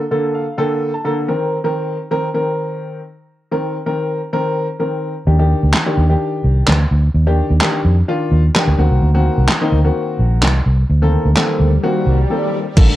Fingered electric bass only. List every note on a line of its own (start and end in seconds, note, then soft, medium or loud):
5.27 5.53 D#2 loud
5.63 5.71 D2 medium
5.97 6.14 D#2 medium
6.44 6.61 C2 loud
6.68 6.85 D2 medium
6.91 7.08 D2 medium
7.14 7.40 D#2 loud
7.50 7.58 D#2 medium
7.85 8.02 F2 medium
8.32 8.48 D#2 medium
8.67 8.75 D2 medium
8.78 8.87 D2 medium
8.91 8.99 C2 medium
9.02 9.28 D2 medium
9.38 9.46 C2 medium
9.72 9.89 D2 medium
10.19 10.43 A#1 medium
10.43 10.59 C2 medium
10.66 10.83 C2 medium
10.89 11.15 D2 loud
11.25 11.33 D2 medium
11.60 11.77 D2 medium
12.06 12.23 C2 medium
12.77 12.86 A#1 loud